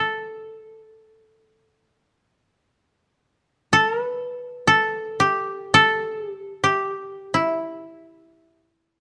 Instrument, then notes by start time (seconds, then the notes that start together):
koto
Already playing: A4 B4
3.73 A4
3.90 A#4
4.01 B4
4.67 A4
5.20 G4
5.74 A4
6.19 G#4
6.30 G4
6.64 G4
7.34 E4